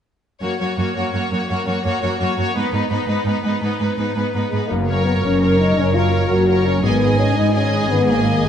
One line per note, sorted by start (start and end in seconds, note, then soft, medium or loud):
0.41 0.49 F#2 soft
0.41 0.59 A#3 soft
0.41 0.59 F#4 soft
0.41 0.58 C#5 soft
0.60 0.67 F#2 soft
0.60 0.77 A#3 soft
0.60 0.77 F#4 soft
0.60 0.77 C#5 soft
0.78 0.85 F#2 soft
0.78 0.95 A#3 soft
0.78 0.94 F#4 soft
0.78 0.94 C#5 soft
0.95 1.04 F#2 soft
0.95 1.13 A#3 soft
0.95 1.13 F#4 soft
0.95 1.11 C#5 soft
1.12 1.21 F#2 soft
1.12 1.31 A#3 soft
1.12 1.31 F#4 soft
1.12 1.30 C#5 soft
1.31 1.38 F#2 soft
1.31 1.48 A#3 soft
1.31 1.49 F#4 soft
1.31 1.48 C#5 soft
1.49 1.57 F#2 soft
1.49 1.66 A#3 soft
1.49 1.65 F#4 soft
1.49 1.65 C#5 soft
1.67 1.74 F#2 soft
1.67 1.84 A#3 soft
1.67 1.84 F#4 soft
1.67 1.84 C#5 soft
1.85 1.92 F#2 soft
1.85 2.02 A#3 soft
1.85 2.01 F#4 soft
1.85 2.01 C#5 soft
2.02 2.09 F#2 soft
2.02 2.19 A#3 soft
2.02 2.19 F#4 soft
2.02 2.19 C#5 soft
2.20 2.27 F#2 soft
2.20 2.37 A#3 soft
2.20 2.37 F#4 soft
2.20 2.38 C#5 soft
2.38 2.45 F#2 soft
2.38 2.55 A#3 soft
2.38 2.55 F#4 soft
2.38 2.56 C#5 soft
2.55 2.62 G#2 soft
2.55 2.72 B3 soft
2.55 2.72 D#4 soft
2.55 2.72 B4 soft
2.73 2.80 G#2 soft
2.73 2.90 B3 soft
2.73 2.89 D#4 soft
2.73 2.89 B4 soft
2.90 2.97 G#2 soft
2.90 3.07 B3 soft
2.90 3.08 D#4 soft
2.90 3.07 B4 soft
3.08 3.15 G#2 soft
3.08 3.25 B3 soft
3.08 3.25 D#4 soft
3.08 3.25 B4 soft
3.25 3.33 G#2 soft
3.25 3.44 B3 soft
3.25 3.43 D#4 soft
3.25 3.43 B4 soft
3.43 3.50 G#2 soft
3.43 3.61 B3 soft
3.43 3.62 D#4 soft
3.43 3.61 B4 soft
3.61 3.69 G#2 soft
3.61 3.78 B3 soft
3.61 3.80 D#4 soft
3.61 3.78 B4 soft
3.79 3.87 G#2 soft
3.79 3.97 B3 soft
3.79 3.98 D#4 soft
3.79 3.96 B4 soft
3.97 4.05 G#2 soft
3.97 4.15 B3 soft
3.97 4.16 D#4 soft
3.97 4.14 B4 soft
4.15 4.22 G#2 soft
4.15 4.34 B3 soft
4.15 4.34 D#4 soft
4.15 4.33 B4 soft
4.34 4.41 G#2 soft
4.34 4.51 B3 soft
4.34 4.52 D#4 soft
4.34 4.51 B4 soft
4.49 4.60 G#2 soft
4.49 4.68 G#3 soft
4.49 4.70 B3 soft
4.49 4.70 B4 soft
4.54 4.71 D#4 soft
4.68 5.17 F#1 soft
4.68 6.85 F#2 soft
4.68 5.18 F#2 soft
4.68 5.05 A#3 medium
4.88 5.94 A#3 soft
4.88 5.41 A#4 soft
4.88 5.42 A#4 soft
4.88 5.41 C#5 soft
5.04 5.13 B3 soft
5.04 5.40 A#4 soft
5.23 5.71 F#1 soft
5.23 5.72 F#2 soft
5.23 5.60 C#4 medium
5.23 5.58 C#5 soft
5.42 6.11 A#4 soft
5.42 5.95 A#4 soft
5.42 5.94 C#5 soft
5.59 5.77 D#4 medium
5.59 6.29 C#5 soft
5.77 6.24 F#1 soft
5.77 6.25 F#2 soft
5.77 6.85 C#3 soft
5.77 5.96 C#4 medium
5.93 6.85 A#3 soft
5.93 6.30 F4 medium
5.93 6.48 A#4 soft
5.93 6.47 A#4 soft
5.93 6.47 C#5 soft
6.12 6.46 A#4 soft
6.30 6.77 F#1 soft
6.30 6.77 F#2 soft
6.30 6.65 F#4 soft
6.30 6.64 C#5 soft
6.48 6.85 A#4 soft
6.48 6.83 A#4 soft
6.48 6.84 A#4 soft
6.48 6.83 C#5 soft
6.65 6.83 C#4 medium
6.65 6.85 C#5 soft
6.82 7.30 G#1 soft
6.82 8.49 G#2 soft
6.82 7.31 G#2 soft
6.82 7.17 B3 medium
6.82 7.01 G#4 soft
6.82 7.01 D#5 soft
6.82 7.00 G#5 soft
7.01 8.08 D#4 soft
7.01 7.53 G#4 soft
7.01 7.54 D#5 soft
7.01 7.53 G#5 soft
7.17 7.36 C#4 medium
7.17 8.25 G#4 soft
7.36 7.83 G#1 soft
7.36 7.84 G#2 soft
7.36 7.54 D#4 medium
7.36 7.72 B4 soft
7.54 7.89 C#4 medium
7.54 8.06 G#4 soft
7.54 8.49 D#5 soft
7.54 8.07 D#5 soft
7.54 8.07 G#5 soft
7.73 8.43 B4 soft
7.90 8.36 G#1 soft
7.90 8.37 G#2 soft
7.90 8.49 D#3 soft
7.90 8.07 B3 medium
8.07 8.44 A#3 medium
8.07 8.49 D#4 soft
8.07 8.49 G#4 soft
8.07 8.49 D#5 soft
8.07 8.49 G#5 soft
8.26 8.49 G#4 soft
8.42 8.49 G#1 soft
8.42 8.49 G#2 soft
8.42 8.49 G#3 medium
8.42 8.49 B4 soft